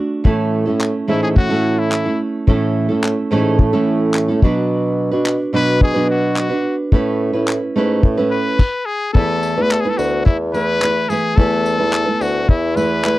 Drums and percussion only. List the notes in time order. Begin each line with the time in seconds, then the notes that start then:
0.25 kick
0.81 clap
1.36 kick
1.92 clap
2.48 kick
3.04 clap
3.59 kick
4.14 clap
4.42 kick
5.26 clap
5.81 kick
6.36 clap
6.92 kick
7.48 clap
8.03 kick
8.59 kick, crash
9.15 kick
9.43 tambourine
9.71 clap
9.99 tambourine
10.26 kick
10.54 tambourine
10.82 clap
11.10 tambourine
11.38 kick
11.66 tambourine
11.93 clap
12.21 tambourine
12.49 kick
12.77 tambourine
13.04 clap